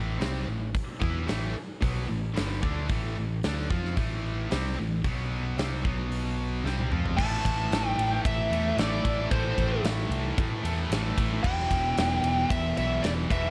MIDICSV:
0, 0, Header, 1, 8, 480
1, 0, Start_track
1, 0, Key_signature, 0, "minor"
1, 0, Tempo, 537634
1, 661, Time_signature, 4, 2, 24, 8
1, 5939, Tempo, 532387
1, 12115, End_track
2, 0, Start_track
2, 0, Title_t, "Lead electric guitar"
2, 0, Program_c, 0, 29
2, 6406, Note_on_c, 0, 81, 125
2, 7055, Note_off_c, 0, 81, 0
2, 7055, Note_on_c, 0, 79, 125
2, 7339, Note_off_c, 0, 79, 0
2, 7387, Note_on_c, 0, 76, 93
2, 7831, Note_off_c, 0, 76, 0
2, 7869, Note_on_c, 0, 74, 88
2, 8339, Note_on_c, 0, 72, 91
2, 8360, Note_off_c, 0, 74, 0
2, 8786, Note_off_c, 0, 72, 0
2, 10248, Note_on_c, 0, 79, 121
2, 11214, Note_off_c, 0, 79, 0
2, 11218, Note_on_c, 0, 76, 93
2, 11442, Note_off_c, 0, 76, 0
2, 11464, Note_on_c, 0, 76, 104
2, 11686, Note_on_c, 0, 74, 84
2, 11709, Note_off_c, 0, 76, 0
2, 11753, Note_off_c, 0, 74, 0
2, 11946, Note_on_c, 0, 76, 90
2, 12103, Note_off_c, 0, 76, 0
2, 12115, End_track
3, 0, Start_track
3, 0, Title_t, "Distorted electric guitar"
3, 0, Program_c, 1, 30
3, 0, Note_on_c, 1, 45, 83
3, 0, Note_on_c, 1, 52, 84
3, 0, Note_on_c, 1, 57, 87
3, 166, Note_off_c, 1, 45, 0
3, 169, Note_on_c, 1, 48, 81
3, 171, Note_off_c, 1, 52, 0
3, 171, Note_off_c, 1, 57, 0
3, 178, Note_on_c, 1, 55, 83
3, 186, Note_on_c, 1, 60, 97
3, 405, Note_off_c, 1, 48, 0
3, 409, Note_on_c, 1, 45, 54
3, 412, Note_off_c, 1, 55, 0
3, 416, Note_off_c, 1, 60, 0
3, 420, Note_on_c, 1, 52, 67
3, 607, Note_off_c, 1, 45, 0
3, 613, Note_off_c, 1, 52, 0
3, 890, Note_on_c, 1, 52, 78
3, 894, Note_on_c, 1, 59, 96
3, 903, Note_on_c, 1, 64, 95
3, 1119, Note_off_c, 1, 52, 0
3, 1122, Note_on_c, 1, 45, 74
3, 1126, Note_off_c, 1, 59, 0
3, 1129, Note_on_c, 1, 52, 94
3, 1134, Note_off_c, 1, 64, 0
3, 1138, Note_on_c, 1, 57, 89
3, 1361, Note_off_c, 1, 45, 0
3, 1369, Note_off_c, 1, 52, 0
3, 1373, Note_off_c, 1, 57, 0
3, 1615, Note_on_c, 1, 47, 77
3, 1623, Note_on_c, 1, 59, 85
3, 1624, Note_on_c, 1, 54, 91
3, 1852, Note_off_c, 1, 47, 0
3, 1852, Note_off_c, 1, 54, 0
3, 1856, Note_on_c, 1, 45, 67
3, 1856, Note_on_c, 1, 52, 69
3, 1857, Note_off_c, 1, 59, 0
3, 2052, Note_off_c, 1, 45, 0
3, 2052, Note_off_c, 1, 52, 0
3, 2090, Note_on_c, 1, 43, 82
3, 2096, Note_on_c, 1, 50, 86
3, 2102, Note_on_c, 1, 55, 100
3, 2325, Note_off_c, 1, 50, 0
3, 2330, Note_off_c, 1, 43, 0
3, 2335, Note_off_c, 1, 55, 0
3, 2336, Note_on_c, 1, 50, 87
3, 2339, Note_on_c, 1, 57, 88
3, 2351, Note_on_c, 1, 62, 99
3, 2573, Note_off_c, 1, 50, 0
3, 2575, Note_off_c, 1, 57, 0
3, 2578, Note_on_c, 1, 45, 99
3, 2581, Note_off_c, 1, 62, 0
3, 2586, Note_on_c, 1, 52, 99
3, 2593, Note_on_c, 1, 57, 100
3, 2814, Note_off_c, 1, 45, 0
3, 2819, Note_off_c, 1, 52, 0
3, 2822, Note_off_c, 1, 57, 0
3, 2824, Note_on_c, 1, 45, 65
3, 2829, Note_on_c, 1, 52, 67
3, 3017, Note_off_c, 1, 45, 0
3, 3019, Note_off_c, 1, 52, 0
3, 3077, Note_on_c, 1, 50, 89
3, 3077, Note_on_c, 1, 57, 88
3, 3085, Note_on_c, 1, 62, 96
3, 3299, Note_off_c, 1, 50, 0
3, 3303, Note_on_c, 1, 53, 90
3, 3304, Note_off_c, 1, 57, 0
3, 3308, Note_off_c, 1, 62, 0
3, 3308, Note_on_c, 1, 60, 96
3, 3315, Note_on_c, 1, 65, 97
3, 3537, Note_off_c, 1, 53, 0
3, 3540, Note_off_c, 1, 60, 0
3, 3541, Note_on_c, 1, 45, 74
3, 3543, Note_off_c, 1, 65, 0
3, 3546, Note_on_c, 1, 52, 84
3, 3548, Note_on_c, 1, 57, 89
3, 4016, Note_off_c, 1, 45, 0
3, 4018, Note_off_c, 1, 52, 0
3, 4019, Note_off_c, 1, 57, 0
3, 4023, Note_on_c, 1, 48, 82
3, 4025, Note_on_c, 1, 55, 90
3, 4032, Note_on_c, 1, 60, 88
3, 4257, Note_off_c, 1, 48, 0
3, 4257, Note_off_c, 1, 55, 0
3, 4261, Note_off_c, 1, 60, 0
3, 4263, Note_on_c, 1, 45, 56
3, 4268, Note_on_c, 1, 52, 62
3, 4456, Note_off_c, 1, 45, 0
3, 4458, Note_off_c, 1, 52, 0
3, 4501, Note_on_c, 1, 47, 99
3, 4505, Note_on_c, 1, 59, 114
3, 4506, Note_on_c, 1, 54, 92
3, 4974, Note_off_c, 1, 47, 0
3, 4976, Note_off_c, 1, 59, 0
3, 4977, Note_off_c, 1, 54, 0
3, 4978, Note_on_c, 1, 48, 87
3, 4980, Note_on_c, 1, 55, 82
3, 4988, Note_on_c, 1, 60, 90
3, 5213, Note_off_c, 1, 48, 0
3, 5214, Note_off_c, 1, 55, 0
3, 5217, Note_off_c, 1, 60, 0
3, 5220, Note_on_c, 1, 47, 89
3, 5231, Note_on_c, 1, 54, 86
3, 5235, Note_on_c, 1, 59, 96
3, 5930, Note_off_c, 1, 47, 0
3, 5934, Note_off_c, 1, 54, 0
3, 5936, Note_on_c, 1, 48, 73
3, 5938, Note_off_c, 1, 59, 0
3, 5938, Note_on_c, 1, 55, 82
3, 5942, Note_on_c, 1, 60, 87
3, 6171, Note_off_c, 1, 48, 0
3, 6172, Note_off_c, 1, 55, 0
3, 6174, Note_off_c, 1, 60, 0
3, 6180, Note_on_c, 1, 53, 86
3, 6190, Note_on_c, 1, 60, 87
3, 6195, Note_on_c, 1, 65, 85
3, 6413, Note_off_c, 1, 53, 0
3, 6418, Note_off_c, 1, 60, 0
3, 6420, Note_on_c, 1, 45, 102
3, 6421, Note_off_c, 1, 65, 0
3, 6444, Note_on_c, 1, 52, 110
3, 6454, Note_on_c, 1, 57, 108
3, 7595, Note_off_c, 1, 57, 0
3, 7606, Note_on_c, 1, 57, 83
3, 7607, Note_off_c, 1, 45, 0
3, 7619, Note_off_c, 1, 52, 0
3, 7622, Note_on_c, 1, 52, 88
3, 7640, Note_on_c, 1, 45, 72
3, 7833, Note_off_c, 1, 45, 0
3, 7840, Note_off_c, 1, 57, 0
3, 7844, Note_on_c, 1, 45, 86
3, 7858, Note_off_c, 1, 52, 0
3, 7862, Note_on_c, 1, 52, 78
3, 7880, Note_on_c, 1, 57, 88
3, 8318, Note_off_c, 1, 45, 0
3, 8332, Note_on_c, 1, 45, 90
3, 8336, Note_off_c, 1, 57, 0
3, 8351, Note_off_c, 1, 52, 0
3, 8354, Note_on_c, 1, 52, 98
3, 8365, Note_on_c, 1, 57, 109
3, 9516, Note_off_c, 1, 57, 0
3, 9521, Note_off_c, 1, 45, 0
3, 9527, Note_on_c, 1, 57, 86
3, 9546, Note_off_c, 1, 52, 0
3, 9549, Note_on_c, 1, 52, 83
3, 9558, Note_on_c, 1, 45, 68
3, 9759, Note_off_c, 1, 57, 0
3, 9763, Note_off_c, 1, 45, 0
3, 9774, Note_on_c, 1, 45, 74
3, 9783, Note_off_c, 1, 52, 0
3, 9787, Note_on_c, 1, 52, 80
3, 9803, Note_on_c, 1, 57, 79
3, 10239, Note_on_c, 1, 40, 98
3, 10242, Note_off_c, 1, 45, 0
3, 10256, Note_on_c, 1, 47, 99
3, 10257, Note_off_c, 1, 57, 0
3, 10271, Note_off_c, 1, 52, 0
3, 10274, Note_on_c, 1, 52, 107
3, 11435, Note_off_c, 1, 40, 0
3, 11441, Note_off_c, 1, 52, 0
3, 11443, Note_off_c, 1, 47, 0
3, 11444, Note_on_c, 1, 52, 88
3, 11459, Note_on_c, 1, 47, 87
3, 11476, Note_on_c, 1, 40, 69
3, 11658, Note_off_c, 1, 40, 0
3, 11669, Note_on_c, 1, 40, 71
3, 11674, Note_off_c, 1, 47, 0
3, 11685, Note_on_c, 1, 47, 86
3, 11696, Note_off_c, 1, 52, 0
3, 11699, Note_on_c, 1, 52, 83
3, 12115, Note_off_c, 1, 40, 0
3, 12115, Note_off_c, 1, 47, 0
3, 12115, Note_off_c, 1, 52, 0
3, 12115, End_track
4, 0, Start_track
4, 0, Title_t, "Distorted electric guitar"
4, 0, Program_c, 2, 30
4, 8093, Note_on_c, 2, 57, 88
4, 8110, Note_on_c, 2, 52, 74
4, 8124, Note_on_c, 2, 45, 72
4, 8323, Note_off_c, 2, 57, 0
4, 8324, Note_off_c, 2, 45, 0
4, 8344, Note_off_c, 2, 52, 0
4, 10014, Note_on_c, 2, 57, 84
4, 10027, Note_on_c, 2, 52, 81
4, 10042, Note_on_c, 2, 45, 66
4, 10242, Note_off_c, 2, 57, 0
4, 10256, Note_off_c, 2, 45, 0
4, 10276, Note_off_c, 2, 52, 0
4, 11931, Note_on_c, 2, 52, 79
4, 11945, Note_on_c, 2, 47, 83
4, 11958, Note_on_c, 2, 40, 69
4, 12115, Note_off_c, 2, 40, 0
4, 12115, Note_off_c, 2, 47, 0
4, 12115, Note_off_c, 2, 52, 0
4, 12115, End_track
5, 0, Start_track
5, 0, Title_t, "Picked electric bass"
5, 0, Program_c, 3, 34
5, 0, Note_on_c, 3, 33, 90
5, 149, Note_off_c, 3, 33, 0
5, 189, Note_on_c, 3, 36, 85
5, 409, Note_off_c, 3, 36, 0
5, 420, Note_on_c, 3, 33, 75
5, 644, Note_off_c, 3, 33, 0
5, 905, Note_on_c, 3, 40, 101
5, 1127, Note_off_c, 3, 40, 0
5, 1162, Note_on_c, 3, 33, 88
5, 1376, Note_off_c, 3, 33, 0
5, 1631, Note_on_c, 3, 35, 89
5, 1851, Note_off_c, 3, 35, 0
5, 1870, Note_on_c, 3, 33, 74
5, 2091, Note_off_c, 3, 33, 0
5, 2126, Note_on_c, 3, 31, 82
5, 2339, Note_off_c, 3, 31, 0
5, 2343, Note_on_c, 3, 38, 82
5, 2567, Note_off_c, 3, 38, 0
5, 2587, Note_on_c, 3, 33, 84
5, 2810, Note_off_c, 3, 33, 0
5, 2841, Note_on_c, 3, 33, 83
5, 3057, Note_off_c, 3, 33, 0
5, 3079, Note_on_c, 3, 38, 84
5, 3296, Note_off_c, 3, 38, 0
5, 3310, Note_on_c, 3, 41, 95
5, 3531, Note_off_c, 3, 41, 0
5, 3546, Note_on_c, 3, 33, 82
5, 3992, Note_off_c, 3, 33, 0
5, 4035, Note_on_c, 3, 36, 85
5, 4254, Note_off_c, 3, 36, 0
5, 4279, Note_on_c, 3, 33, 69
5, 4496, Note_off_c, 3, 33, 0
5, 4502, Note_on_c, 3, 35, 81
5, 4948, Note_off_c, 3, 35, 0
5, 4979, Note_on_c, 3, 36, 86
5, 5203, Note_off_c, 3, 36, 0
5, 5224, Note_on_c, 3, 35, 93
5, 5904, Note_off_c, 3, 35, 0
5, 5929, Note_on_c, 3, 36, 88
5, 6158, Note_off_c, 3, 36, 0
5, 6182, Note_on_c, 3, 41, 88
5, 6405, Note_off_c, 3, 41, 0
5, 6424, Note_on_c, 3, 33, 87
5, 6610, Note_off_c, 3, 33, 0
5, 6661, Note_on_c, 3, 33, 102
5, 6848, Note_off_c, 3, 33, 0
5, 6894, Note_on_c, 3, 33, 88
5, 7084, Note_off_c, 3, 33, 0
5, 7129, Note_on_c, 3, 33, 97
5, 7321, Note_off_c, 3, 33, 0
5, 7385, Note_on_c, 3, 33, 99
5, 7571, Note_off_c, 3, 33, 0
5, 7608, Note_on_c, 3, 40, 92
5, 7801, Note_off_c, 3, 40, 0
5, 7852, Note_on_c, 3, 33, 90
5, 8043, Note_off_c, 3, 33, 0
5, 8101, Note_on_c, 3, 33, 93
5, 8289, Note_off_c, 3, 33, 0
5, 8338, Note_on_c, 3, 33, 92
5, 8526, Note_off_c, 3, 33, 0
5, 8583, Note_on_c, 3, 33, 105
5, 8769, Note_off_c, 3, 33, 0
5, 8805, Note_on_c, 3, 33, 92
5, 8998, Note_off_c, 3, 33, 0
5, 9044, Note_on_c, 3, 36, 98
5, 9238, Note_off_c, 3, 36, 0
5, 9304, Note_on_c, 3, 45, 91
5, 9490, Note_off_c, 3, 45, 0
5, 9532, Note_on_c, 3, 40, 92
5, 9722, Note_off_c, 3, 40, 0
5, 9767, Note_on_c, 3, 33, 89
5, 9959, Note_off_c, 3, 33, 0
5, 10021, Note_on_c, 3, 33, 90
5, 10208, Note_off_c, 3, 33, 0
5, 10259, Note_on_c, 3, 28, 96
5, 10446, Note_off_c, 3, 28, 0
5, 10497, Note_on_c, 3, 28, 109
5, 10685, Note_off_c, 3, 28, 0
5, 10741, Note_on_c, 3, 28, 91
5, 10927, Note_off_c, 3, 28, 0
5, 10968, Note_on_c, 3, 28, 93
5, 11160, Note_off_c, 3, 28, 0
5, 11215, Note_on_c, 3, 28, 93
5, 11404, Note_off_c, 3, 28, 0
5, 11459, Note_on_c, 3, 35, 100
5, 11647, Note_off_c, 3, 35, 0
5, 11697, Note_on_c, 3, 28, 86
5, 11885, Note_off_c, 3, 28, 0
5, 11932, Note_on_c, 3, 28, 90
5, 12115, Note_off_c, 3, 28, 0
5, 12115, End_track
6, 0, Start_track
6, 0, Title_t, "Muted distorted electric guitar strokes"
6, 1372, Note_on_c, 9, 29, 57
6, 1461, Note_off_c, 9, 29, 0
6, 12115, End_track
7, 0, Start_track
7, 0, Title_t, "Muted picked electric bass strokes"
7, 1402, Note_on_c, 9, 29, 40
7, 1491, Note_off_c, 9, 29, 0
7, 12115, End_track
8, 0, Start_track
8, 0, Title_t, "Drums"
8, 187, Note_on_c, 9, 46, 50
8, 197, Note_on_c, 9, 38, 109
8, 276, Note_off_c, 9, 46, 0
8, 286, Note_off_c, 9, 38, 0
8, 666, Note_on_c, 9, 36, 94
8, 666, Note_on_c, 9, 46, 50
8, 755, Note_off_c, 9, 46, 0
8, 756, Note_off_c, 9, 36, 0
8, 907, Note_on_c, 9, 36, 100
8, 996, Note_off_c, 9, 36, 0
8, 1144, Note_on_c, 9, 46, 53
8, 1154, Note_on_c, 9, 38, 102
8, 1233, Note_off_c, 9, 46, 0
8, 1243, Note_off_c, 9, 38, 0
8, 1628, Note_on_c, 9, 36, 104
8, 1630, Note_on_c, 9, 46, 59
8, 1717, Note_off_c, 9, 36, 0
8, 1719, Note_off_c, 9, 46, 0
8, 2110, Note_on_c, 9, 46, 57
8, 2120, Note_on_c, 9, 38, 105
8, 2200, Note_off_c, 9, 46, 0
8, 2209, Note_off_c, 9, 38, 0
8, 2347, Note_on_c, 9, 36, 105
8, 2437, Note_off_c, 9, 36, 0
8, 2579, Note_on_c, 9, 46, 54
8, 2585, Note_on_c, 9, 36, 98
8, 2669, Note_off_c, 9, 46, 0
8, 2674, Note_off_c, 9, 36, 0
8, 3063, Note_on_c, 9, 46, 54
8, 3073, Note_on_c, 9, 38, 97
8, 3152, Note_off_c, 9, 46, 0
8, 3162, Note_off_c, 9, 38, 0
8, 3308, Note_on_c, 9, 36, 93
8, 3397, Note_off_c, 9, 36, 0
8, 3438, Note_on_c, 9, 38, 31
8, 3527, Note_off_c, 9, 38, 0
8, 3544, Note_on_c, 9, 46, 54
8, 3546, Note_on_c, 9, 36, 109
8, 3633, Note_off_c, 9, 46, 0
8, 3635, Note_off_c, 9, 36, 0
8, 4026, Note_on_c, 9, 46, 50
8, 4036, Note_on_c, 9, 38, 102
8, 4115, Note_off_c, 9, 46, 0
8, 4125, Note_off_c, 9, 38, 0
8, 4504, Note_on_c, 9, 36, 94
8, 4507, Note_on_c, 9, 46, 47
8, 4593, Note_off_c, 9, 36, 0
8, 4596, Note_off_c, 9, 46, 0
8, 4984, Note_on_c, 9, 46, 51
8, 4994, Note_on_c, 9, 38, 112
8, 5074, Note_off_c, 9, 46, 0
8, 5083, Note_off_c, 9, 38, 0
8, 5222, Note_on_c, 9, 36, 95
8, 5311, Note_off_c, 9, 36, 0
8, 5462, Note_on_c, 9, 46, 60
8, 5551, Note_off_c, 9, 46, 0
8, 5948, Note_on_c, 9, 38, 56
8, 6038, Note_off_c, 9, 38, 0
8, 6062, Note_on_c, 9, 48, 58
8, 6152, Note_off_c, 9, 48, 0
8, 6178, Note_on_c, 9, 45, 79
8, 6268, Note_off_c, 9, 45, 0
8, 6302, Note_on_c, 9, 43, 73
8, 6392, Note_off_c, 9, 43, 0
8, 6419, Note_on_c, 9, 36, 101
8, 6428, Note_on_c, 9, 49, 122
8, 6510, Note_off_c, 9, 36, 0
8, 6518, Note_off_c, 9, 49, 0
8, 6660, Note_on_c, 9, 36, 84
8, 6665, Note_on_c, 9, 51, 83
8, 6750, Note_off_c, 9, 36, 0
8, 6755, Note_off_c, 9, 51, 0
8, 6903, Note_on_c, 9, 51, 103
8, 6913, Note_on_c, 9, 38, 117
8, 6993, Note_off_c, 9, 51, 0
8, 7003, Note_off_c, 9, 38, 0
8, 7145, Note_on_c, 9, 51, 75
8, 7235, Note_off_c, 9, 51, 0
8, 7380, Note_on_c, 9, 36, 127
8, 7387, Note_on_c, 9, 51, 107
8, 7471, Note_off_c, 9, 36, 0
8, 7478, Note_off_c, 9, 51, 0
8, 7630, Note_on_c, 9, 51, 71
8, 7720, Note_off_c, 9, 51, 0
8, 7860, Note_on_c, 9, 51, 94
8, 7870, Note_on_c, 9, 38, 102
8, 7950, Note_off_c, 9, 51, 0
8, 7960, Note_off_c, 9, 38, 0
8, 8100, Note_on_c, 9, 36, 90
8, 8100, Note_on_c, 9, 51, 82
8, 8190, Note_off_c, 9, 36, 0
8, 8190, Note_off_c, 9, 51, 0
8, 8338, Note_on_c, 9, 36, 114
8, 8338, Note_on_c, 9, 51, 101
8, 8428, Note_off_c, 9, 36, 0
8, 8428, Note_off_c, 9, 51, 0
8, 8578, Note_on_c, 9, 36, 80
8, 8581, Note_on_c, 9, 51, 74
8, 8668, Note_off_c, 9, 36, 0
8, 8671, Note_off_c, 9, 51, 0
8, 8817, Note_on_c, 9, 51, 103
8, 8827, Note_on_c, 9, 38, 118
8, 8907, Note_off_c, 9, 51, 0
8, 8917, Note_off_c, 9, 38, 0
8, 8956, Note_on_c, 9, 38, 34
8, 9047, Note_off_c, 9, 38, 0
8, 9062, Note_on_c, 9, 51, 76
8, 9152, Note_off_c, 9, 51, 0
8, 9300, Note_on_c, 9, 36, 127
8, 9302, Note_on_c, 9, 51, 107
8, 9390, Note_off_c, 9, 36, 0
8, 9392, Note_off_c, 9, 51, 0
8, 9544, Note_on_c, 9, 51, 90
8, 9634, Note_off_c, 9, 51, 0
8, 9784, Note_on_c, 9, 51, 110
8, 9794, Note_on_c, 9, 38, 116
8, 9874, Note_off_c, 9, 51, 0
8, 9884, Note_off_c, 9, 38, 0
8, 10018, Note_on_c, 9, 36, 86
8, 10019, Note_on_c, 9, 51, 88
8, 10108, Note_off_c, 9, 36, 0
8, 10110, Note_off_c, 9, 51, 0
8, 10259, Note_on_c, 9, 36, 108
8, 10262, Note_on_c, 9, 49, 103
8, 10349, Note_off_c, 9, 36, 0
8, 10352, Note_off_c, 9, 49, 0
8, 10394, Note_on_c, 9, 38, 31
8, 10485, Note_off_c, 9, 38, 0
8, 10497, Note_on_c, 9, 36, 80
8, 10500, Note_on_c, 9, 51, 83
8, 10587, Note_off_c, 9, 36, 0
8, 10590, Note_off_c, 9, 51, 0
8, 10738, Note_on_c, 9, 51, 110
8, 10748, Note_on_c, 9, 38, 110
8, 10828, Note_off_c, 9, 51, 0
8, 10838, Note_off_c, 9, 38, 0
8, 10975, Note_on_c, 9, 51, 72
8, 11065, Note_off_c, 9, 51, 0
8, 11215, Note_on_c, 9, 36, 114
8, 11223, Note_on_c, 9, 51, 118
8, 11306, Note_off_c, 9, 36, 0
8, 11313, Note_off_c, 9, 51, 0
8, 11457, Note_on_c, 9, 51, 73
8, 11547, Note_off_c, 9, 51, 0
8, 11696, Note_on_c, 9, 51, 98
8, 11706, Note_on_c, 9, 38, 116
8, 11786, Note_off_c, 9, 51, 0
8, 11796, Note_off_c, 9, 38, 0
8, 11937, Note_on_c, 9, 36, 96
8, 11943, Note_on_c, 9, 51, 77
8, 12027, Note_off_c, 9, 36, 0
8, 12033, Note_off_c, 9, 51, 0
8, 12115, End_track
0, 0, End_of_file